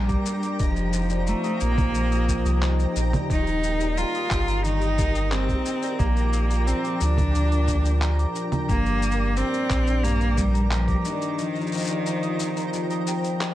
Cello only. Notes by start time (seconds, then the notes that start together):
Already playing: G3
0.61 F3
1.28 A3
1.61 A#3
3.32 D#4
3.98 F4
4.66 D#4
5.32 C4
5.99 A#3
6.67 C4
7.01 D4
8.69 A#3
9.37 C4
10.03 A#3
10.38 G3
10.72 F3
11.06 D#3